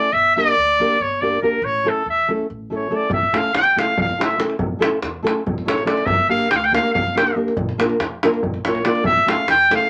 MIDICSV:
0, 0, Header, 1, 5, 480
1, 0, Start_track
1, 0, Tempo, 424628
1, 145, Time_signature, 7, 3, 24, 8
1, 11188, End_track
2, 0, Start_track
2, 0, Title_t, "Trumpet"
2, 0, Program_c, 0, 56
2, 0, Note_on_c, 0, 74, 96
2, 143, Note_on_c, 0, 76, 94
2, 160, Note_off_c, 0, 74, 0
2, 399, Note_off_c, 0, 76, 0
2, 405, Note_on_c, 0, 74, 110
2, 1146, Note_on_c, 0, 73, 87
2, 1163, Note_off_c, 0, 74, 0
2, 1368, Note_on_c, 0, 74, 80
2, 1385, Note_off_c, 0, 73, 0
2, 1596, Note_off_c, 0, 74, 0
2, 1609, Note_on_c, 0, 70, 76
2, 1855, Note_on_c, 0, 73, 90
2, 1872, Note_off_c, 0, 70, 0
2, 2135, Note_on_c, 0, 69, 80
2, 2152, Note_off_c, 0, 73, 0
2, 2340, Note_off_c, 0, 69, 0
2, 2368, Note_on_c, 0, 76, 87
2, 2592, Note_off_c, 0, 76, 0
2, 3114, Note_on_c, 0, 73, 69
2, 3337, Note_on_c, 0, 74, 84
2, 3354, Note_off_c, 0, 73, 0
2, 3531, Note_off_c, 0, 74, 0
2, 3538, Note_on_c, 0, 76, 87
2, 3809, Note_on_c, 0, 77, 92
2, 3826, Note_off_c, 0, 76, 0
2, 4005, Note_off_c, 0, 77, 0
2, 4012, Note_on_c, 0, 79, 104
2, 4281, Note_on_c, 0, 77, 93
2, 4298, Note_off_c, 0, 79, 0
2, 4500, Note_off_c, 0, 77, 0
2, 4529, Note_on_c, 0, 77, 89
2, 4743, Note_off_c, 0, 77, 0
2, 4784, Note_on_c, 0, 76, 79
2, 4970, Note_off_c, 0, 76, 0
2, 6420, Note_on_c, 0, 73, 79
2, 6623, Note_off_c, 0, 73, 0
2, 6630, Note_on_c, 0, 74, 87
2, 6844, Note_on_c, 0, 76, 98
2, 6861, Note_off_c, 0, 74, 0
2, 7111, Note_off_c, 0, 76, 0
2, 7118, Note_on_c, 0, 77, 100
2, 7336, Note_off_c, 0, 77, 0
2, 7351, Note_on_c, 0, 79, 99
2, 7416, Note_on_c, 0, 77, 94
2, 7433, Note_off_c, 0, 79, 0
2, 7509, Note_on_c, 0, 79, 98
2, 7526, Note_off_c, 0, 77, 0
2, 7617, Note_off_c, 0, 79, 0
2, 7624, Note_on_c, 0, 77, 95
2, 7834, Note_off_c, 0, 77, 0
2, 7841, Note_on_c, 0, 77, 90
2, 8078, Note_off_c, 0, 77, 0
2, 8110, Note_on_c, 0, 79, 74
2, 8313, Note_off_c, 0, 79, 0
2, 9782, Note_on_c, 0, 73, 75
2, 9995, Note_on_c, 0, 74, 84
2, 10012, Note_off_c, 0, 73, 0
2, 10222, Note_off_c, 0, 74, 0
2, 10237, Note_on_c, 0, 76, 101
2, 10507, Note_on_c, 0, 77, 91
2, 10524, Note_off_c, 0, 76, 0
2, 10728, Note_off_c, 0, 77, 0
2, 10737, Note_on_c, 0, 79, 105
2, 10977, Note_off_c, 0, 79, 0
2, 11025, Note_on_c, 0, 77, 95
2, 11188, Note_off_c, 0, 77, 0
2, 11188, End_track
3, 0, Start_track
3, 0, Title_t, "Nylon-string guitar"
3, 0, Program_c, 1, 24
3, 410, Note_on_c, 1, 58, 65
3, 416, Note_on_c, 1, 62, 54
3, 421, Note_on_c, 1, 67, 55
3, 428, Note_on_c, 1, 70, 67
3, 594, Note_off_c, 1, 58, 0
3, 597, Note_off_c, 1, 62, 0
3, 600, Note_off_c, 1, 67, 0
3, 601, Note_off_c, 1, 70, 0
3, 899, Note_on_c, 1, 58, 63
3, 906, Note_on_c, 1, 62, 53
3, 912, Note_on_c, 1, 67, 60
3, 919, Note_on_c, 1, 70, 65
3, 1085, Note_off_c, 1, 58, 0
3, 1089, Note_off_c, 1, 62, 0
3, 1092, Note_off_c, 1, 67, 0
3, 1095, Note_off_c, 1, 70, 0
3, 1370, Note_on_c, 1, 58, 59
3, 1379, Note_on_c, 1, 62, 49
3, 1386, Note_on_c, 1, 67, 52
3, 1395, Note_on_c, 1, 70, 60
3, 1554, Note_off_c, 1, 58, 0
3, 1559, Note_off_c, 1, 62, 0
3, 1561, Note_off_c, 1, 67, 0
3, 1567, Note_off_c, 1, 70, 0
3, 1607, Note_on_c, 1, 58, 53
3, 1614, Note_on_c, 1, 62, 61
3, 1619, Note_on_c, 1, 67, 49
3, 1628, Note_on_c, 1, 70, 66
3, 1783, Note_off_c, 1, 58, 0
3, 1787, Note_off_c, 1, 62, 0
3, 1790, Note_off_c, 1, 67, 0
3, 1792, Note_off_c, 1, 70, 0
3, 2083, Note_on_c, 1, 57, 62
3, 2095, Note_on_c, 1, 61, 51
3, 2098, Note_on_c, 1, 64, 65
3, 2106, Note_on_c, 1, 69, 77
3, 2270, Note_off_c, 1, 57, 0
3, 2277, Note_off_c, 1, 61, 0
3, 2277, Note_off_c, 1, 64, 0
3, 2281, Note_off_c, 1, 69, 0
3, 2581, Note_on_c, 1, 57, 64
3, 2589, Note_on_c, 1, 61, 60
3, 2600, Note_on_c, 1, 64, 47
3, 2606, Note_on_c, 1, 69, 59
3, 2766, Note_off_c, 1, 57, 0
3, 2770, Note_off_c, 1, 61, 0
3, 2775, Note_off_c, 1, 64, 0
3, 2778, Note_off_c, 1, 69, 0
3, 3053, Note_on_c, 1, 57, 52
3, 3061, Note_on_c, 1, 61, 50
3, 3067, Note_on_c, 1, 64, 48
3, 3077, Note_on_c, 1, 69, 61
3, 3235, Note_off_c, 1, 57, 0
3, 3239, Note_off_c, 1, 61, 0
3, 3242, Note_off_c, 1, 64, 0
3, 3247, Note_off_c, 1, 69, 0
3, 3279, Note_on_c, 1, 57, 59
3, 3286, Note_on_c, 1, 61, 44
3, 3288, Note_on_c, 1, 64, 55
3, 3298, Note_on_c, 1, 69, 67
3, 3459, Note_off_c, 1, 57, 0
3, 3463, Note_off_c, 1, 61, 0
3, 3463, Note_off_c, 1, 64, 0
3, 3469, Note_off_c, 1, 69, 0
3, 3764, Note_on_c, 1, 57, 69
3, 3774, Note_on_c, 1, 61, 61
3, 3781, Note_on_c, 1, 64, 56
3, 3792, Note_on_c, 1, 69, 71
3, 3951, Note_off_c, 1, 57, 0
3, 3956, Note_off_c, 1, 61, 0
3, 3958, Note_off_c, 1, 64, 0
3, 3964, Note_off_c, 1, 69, 0
3, 4251, Note_on_c, 1, 57, 57
3, 4263, Note_on_c, 1, 61, 49
3, 4263, Note_on_c, 1, 64, 59
3, 4272, Note_on_c, 1, 69, 67
3, 4441, Note_off_c, 1, 57, 0
3, 4446, Note_off_c, 1, 64, 0
3, 4447, Note_off_c, 1, 61, 0
3, 4451, Note_off_c, 1, 69, 0
3, 4720, Note_on_c, 1, 57, 46
3, 4726, Note_on_c, 1, 61, 42
3, 4738, Note_on_c, 1, 64, 53
3, 4743, Note_on_c, 1, 69, 64
3, 4909, Note_off_c, 1, 57, 0
3, 4912, Note_off_c, 1, 61, 0
3, 4918, Note_off_c, 1, 64, 0
3, 4921, Note_off_c, 1, 69, 0
3, 4949, Note_on_c, 1, 57, 56
3, 4955, Note_on_c, 1, 61, 53
3, 4965, Note_on_c, 1, 64, 57
3, 4967, Note_on_c, 1, 69, 57
3, 5135, Note_off_c, 1, 57, 0
3, 5136, Note_off_c, 1, 61, 0
3, 5143, Note_off_c, 1, 64, 0
3, 5143, Note_off_c, 1, 69, 0
3, 5413, Note_on_c, 1, 57, 70
3, 5423, Note_on_c, 1, 61, 66
3, 5429, Note_on_c, 1, 64, 67
3, 5434, Note_on_c, 1, 69, 83
3, 5616, Note_off_c, 1, 57, 0
3, 5621, Note_off_c, 1, 61, 0
3, 5622, Note_off_c, 1, 64, 0
3, 5626, Note_off_c, 1, 69, 0
3, 5907, Note_on_c, 1, 57, 77
3, 5917, Note_on_c, 1, 61, 67
3, 5924, Note_on_c, 1, 64, 58
3, 5926, Note_on_c, 1, 69, 89
3, 6110, Note_off_c, 1, 57, 0
3, 6115, Note_off_c, 1, 61, 0
3, 6118, Note_off_c, 1, 69, 0
3, 6119, Note_off_c, 1, 64, 0
3, 6391, Note_on_c, 1, 57, 62
3, 6397, Note_on_c, 1, 61, 51
3, 6403, Note_on_c, 1, 64, 58
3, 6417, Note_on_c, 1, 69, 63
3, 6585, Note_off_c, 1, 57, 0
3, 6588, Note_off_c, 1, 61, 0
3, 6591, Note_off_c, 1, 64, 0
3, 6598, Note_off_c, 1, 69, 0
3, 6613, Note_on_c, 1, 57, 57
3, 6620, Note_on_c, 1, 61, 59
3, 6625, Note_on_c, 1, 64, 51
3, 6632, Note_on_c, 1, 69, 61
3, 6807, Note_off_c, 1, 57, 0
3, 6810, Note_off_c, 1, 61, 0
3, 6813, Note_off_c, 1, 64, 0
3, 6817, Note_off_c, 1, 69, 0
3, 7107, Note_on_c, 1, 58, 70
3, 7111, Note_on_c, 1, 62, 59
3, 7118, Note_on_c, 1, 67, 62
3, 7130, Note_on_c, 1, 70, 78
3, 7303, Note_off_c, 1, 58, 0
3, 7306, Note_off_c, 1, 62, 0
3, 7308, Note_off_c, 1, 67, 0
3, 7315, Note_off_c, 1, 70, 0
3, 7592, Note_on_c, 1, 58, 73
3, 7599, Note_on_c, 1, 62, 55
3, 7609, Note_on_c, 1, 67, 59
3, 7618, Note_on_c, 1, 70, 77
3, 7793, Note_off_c, 1, 58, 0
3, 7795, Note_off_c, 1, 62, 0
3, 7802, Note_off_c, 1, 67, 0
3, 7803, Note_off_c, 1, 70, 0
3, 8083, Note_on_c, 1, 58, 61
3, 8089, Note_on_c, 1, 62, 54
3, 8096, Note_on_c, 1, 67, 46
3, 8106, Note_on_c, 1, 70, 69
3, 8272, Note_off_c, 1, 58, 0
3, 8275, Note_off_c, 1, 62, 0
3, 8277, Note_off_c, 1, 67, 0
3, 8283, Note_off_c, 1, 70, 0
3, 8312, Note_on_c, 1, 58, 63
3, 8319, Note_on_c, 1, 62, 62
3, 8324, Note_on_c, 1, 67, 61
3, 8332, Note_on_c, 1, 70, 64
3, 8499, Note_off_c, 1, 58, 0
3, 8499, Note_off_c, 1, 62, 0
3, 8503, Note_off_c, 1, 67, 0
3, 8507, Note_off_c, 1, 70, 0
3, 8795, Note_on_c, 1, 58, 70
3, 8805, Note_on_c, 1, 62, 79
3, 8811, Note_on_c, 1, 65, 66
3, 8821, Note_on_c, 1, 70, 76
3, 8988, Note_off_c, 1, 58, 0
3, 8993, Note_off_c, 1, 62, 0
3, 8995, Note_off_c, 1, 65, 0
3, 9001, Note_off_c, 1, 70, 0
3, 9309, Note_on_c, 1, 58, 67
3, 9314, Note_on_c, 1, 62, 78
3, 9321, Note_on_c, 1, 65, 67
3, 9322, Note_on_c, 1, 70, 87
3, 9492, Note_off_c, 1, 58, 0
3, 9495, Note_off_c, 1, 62, 0
3, 9497, Note_off_c, 1, 65, 0
3, 9498, Note_off_c, 1, 70, 0
3, 9790, Note_on_c, 1, 58, 57
3, 9795, Note_on_c, 1, 62, 43
3, 9801, Note_on_c, 1, 65, 51
3, 9813, Note_on_c, 1, 70, 59
3, 9966, Note_off_c, 1, 58, 0
3, 9968, Note_off_c, 1, 62, 0
3, 9971, Note_off_c, 1, 65, 0
3, 9977, Note_off_c, 1, 70, 0
3, 10003, Note_on_c, 1, 58, 62
3, 10010, Note_on_c, 1, 62, 53
3, 10019, Note_on_c, 1, 65, 56
3, 10026, Note_on_c, 1, 70, 64
3, 10184, Note_off_c, 1, 58, 0
3, 10186, Note_off_c, 1, 62, 0
3, 10191, Note_off_c, 1, 65, 0
3, 10195, Note_off_c, 1, 70, 0
3, 10466, Note_on_c, 1, 57, 67
3, 10478, Note_on_c, 1, 61, 49
3, 10481, Note_on_c, 1, 64, 55
3, 10490, Note_on_c, 1, 69, 68
3, 10664, Note_off_c, 1, 57, 0
3, 10669, Note_off_c, 1, 61, 0
3, 10672, Note_off_c, 1, 64, 0
3, 10674, Note_off_c, 1, 69, 0
3, 10964, Note_on_c, 1, 57, 65
3, 10970, Note_on_c, 1, 61, 61
3, 10972, Note_on_c, 1, 64, 54
3, 10982, Note_on_c, 1, 69, 67
3, 11160, Note_off_c, 1, 57, 0
3, 11161, Note_off_c, 1, 61, 0
3, 11164, Note_off_c, 1, 64, 0
3, 11168, Note_off_c, 1, 69, 0
3, 11188, End_track
4, 0, Start_track
4, 0, Title_t, "Upright bass"
4, 0, Program_c, 2, 32
4, 144, Note_on_c, 2, 31, 83
4, 441, Note_off_c, 2, 31, 0
4, 642, Note_on_c, 2, 38, 63
4, 937, Note_off_c, 2, 38, 0
4, 1133, Note_on_c, 2, 31, 78
4, 1548, Note_off_c, 2, 31, 0
4, 1829, Note_on_c, 2, 33, 89
4, 2124, Note_off_c, 2, 33, 0
4, 2326, Note_on_c, 2, 40, 65
4, 2619, Note_off_c, 2, 40, 0
4, 2826, Note_on_c, 2, 33, 73
4, 3237, Note_off_c, 2, 33, 0
4, 3513, Note_on_c, 2, 33, 92
4, 3806, Note_off_c, 2, 33, 0
4, 4010, Note_on_c, 2, 40, 65
4, 4303, Note_off_c, 2, 40, 0
4, 4500, Note_on_c, 2, 33, 71
4, 4913, Note_off_c, 2, 33, 0
4, 5187, Note_on_c, 2, 33, 88
4, 5483, Note_off_c, 2, 33, 0
4, 5682, Note_on_c, 2, 40, 75
4, 5977, Note_off_c, 2, 40, 0
4, 6176, Note_on_c, 2, 33, 86
4, 6591, Note_off_c, 2, 33, 0
4, 6868, Note_on_c, 2, 31, 93
4, 7163, Note_off_c, 2, 31, 0
4, 7367, Note_on_c, 2, 38, 81
4, 7661, Note_off_c, 2, 38, 0
4, 7860, Note_on_c, 2, 31, 82
4, 8274, Note_off_c, 2, 31, 0
4, 8554, Note_on_c, 2, 34, 94
4, 8848, Note_off_c, 2, 34, 0
4, 9037, Note_on_c, 2, 41, 70
4, 9335, Note_off_c, 2, 41, 0
4, 9534, Note_on_c, 2, 34, 81
4, 9949, Note_off_c, 2, 34, 0
4, 10231, Note_on_c, 2, 33, 89
4, 10526, Note_off_c, 2, 33, 0
4, 10722, Note_on_c, 2, 40, 79
4, 11018, Note_off_c, 2, 40, 0
4, 11188, End_track
5, 0, Start_track
5, 0, Title_t, "Davul"
5, 3502, Note_on_c, 9, 43, 82
5, 3615, Note_off_c, 9, 43, 0
5, 3774, Note_on_c, 9, 37, 62
5, 3887, Note_off_c, 9, 37, 0
5, 4007, Note_on_c, 9, 37, 71
5, 4120, Note_off_c, 9, 37, 0
5, 4279, Note_on_c, 9, 37, 67
5, 4392, Note_off_c, 9, 37, 0
5, 4494, Note_on_c, 9, 43, 86
5, 4607, Note_off_c, 9, 43, 0
5, 4626, Note_on_c, 9, 37, 22
5, 4739, Note_off_c, 9, 37, 0
5, 4761, Note_on_c, 9, 37, 77
5, 4868, Note_off_c, 9, 37, 0
5, 4868, Note_on_c, 9, 37, 25
5, 4970, Note_off_c, 9, 37, 0
5, 4970, Note_on_c, 9, 37, 63
5, 5083, Note_off_c, 9, 37, 0
5, 5083, Note_on_c, 9, 37, 23
5, 5190, Note_on_c, 9, 43, 94
5, 5196, Note_off_c, 9, 37, 0
5, 5303, Note_off_c, 9, 43, 0
5, 5451, Note_on_c, 9, 37, 80
5, 5564, Note_off_c, 9, 37, 0
5, 5680, Note_on_c, 9, 37, 67
5, 5793, Note_off_c, 9, 37, 0
5, 5954, Note_on_c, 9, 37, 61
5, 6067, Note_off_c, 9, 37, 0
5, 6182, Note_on_c, 9, 43, 85
5, 6295, Note_off_c, 9, 43, 0
5, 6307, Note_on_c, 9, 37, 22
5, 6420, Note_off_c, 9, 37, 0
5, 6425, Note_on_c, 9, 37, 69
5, 6531, Note_off_c, 9, 37, 0
5, 6531, Note_on_c, 9, 37, 26
5, 6640, Note_off_c, 9, 37, 0
5, 6640, Note_on_c, 9, 37, 61
5, 6753, Note_off_c, 9, 37, 0
5, 6753, Note_on_c, 9, 37, 24
5, 6855, Note_on_c, 9, 43, 97
5, 6866, Note_off_c, 9, 37, 0
5, 6968, Note_off_c, 9, 43, 0
5, 7357, Note_on_c, 9, 37, 73
5, 7470, Note_off_c, 9, 37, 0
5, 7625, Note_on_c, 9, 37, 69
5, 7738, Note_off_c, 9, 37, 0
5, 7857, Note_on_c, 9, 43, 84
5, 7970, Note_off_c, 9, 43, 0
5, 7988, Note_on_c, 9, 37, 20
5, 8101, Note_off_c, 9, 37, 0
5, 8112, Note_on_c, 9, 37, 70
5, 8218, Note_off_c, 9, 37, 0
5, 8218, Note_on_c, 9, 37, 24
5, 8331, Note_off_c, 9, 37, 0
5, 8457, Note_on_c, 9, 37, 21
5, 8554, Note_on_c, 9, 43, 77
5, 8570, Note_off_c, 9, 37, 0
5, 8667, Note_off_c, 9, 43, 0
5, 8690, Note_on_c, 9, 37, 23
5, 8803, Note_off_c, 9, 37, 0
5, 8813, Note_on_c, 9, 37, 69
5, 8923, Note_off_c, 9, 37, 0
5, 8923, Note_on_c, 9, 37, 24
5, 9036, Note_off_c, 9, 37, 0
5, 9044, Note_on_c, 9, 37, 72
5, 9157, Note_off_c, 9, 37, 0
5, 9304, Note_on_c, 9, 37, 74
5, 9417, Note_off_c, 9, 37, 0
5, 9424, Note_on_c, 9, 37, 22
5, 9528, Note_on_c, 9, 43, 83
5, 9537, Note_off_c, 9, 37, 0
5, 9641, Note_off_c, 9, 43, 0
5, 9651, Note_on_c, 9, 37, 22
5, 9764, Note_off_c, 9, 37, 0
5, 9775, Note_on_c, 9, 37, 69
5, 9888, Note_off_c, 9, 37, 0
5, 9890, Note_on_c, 9, 37, 27
5, 10002, Note_off_c, 9, 37, 0
5, 10002, Note_on_c, 9, 37, 67
5, 10115, Note_off_c, 9, 37, 0
5, 10120, Note_on_c, 9, 37, 28
5, 10220, Note_on_c, 9, 43, 87
5, 10233, Note_off_c, 9, 37, 0
5, 10333, Note_off_c, 9, 43, 0
5, 10495, Note_on_c, 9, 37, 81
5, 10608, Note_off_c, 9, 37, 0
5, 10717, Note_on_c, 9, 37, 66
5, 10830, Note_off_c, 9, 37, 0
5, 10980, Note_on_c, 9, 37, 72
5, 11093, Note_off_c, 9, 37, 0
5, 11188, End_track
0, 0, End_of_file